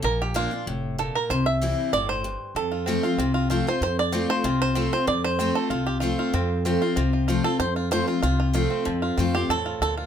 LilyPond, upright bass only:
\new Staff \with { instrumentName = "Upright bass" } { \clef bass \time 4/4 \key f \major \tempo 4 = 190 bes,,2 f,,2 | c,2 g,,2 | f,2 c,2 | f,2 c,2 |
f,2 c,2 | f,2 c,2 | f,2 c,2 | f,4 f,4 e,4 d,4 | }